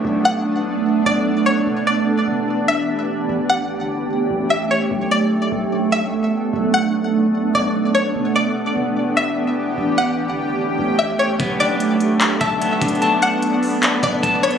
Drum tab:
HH |------------------------|------------------------|------------------------|------------------------|
CP |------------------------|------------------------|------------------------|------------------------|
BD |------------------------|------------------------|------------------------|------------------------|

HH |------------------------|------------------------|------------------------|x--x--x--x--x--x--x--xxx|
CP |------------------------|------------------------|------------------------|------------x-----------|
BD |------------------------|------------------------|------------------------|o--------------o-----o--|

HH |x--x--x--o--x--x--x--xx-|
CP |------------x-----------|
BD |---------------o--o-----|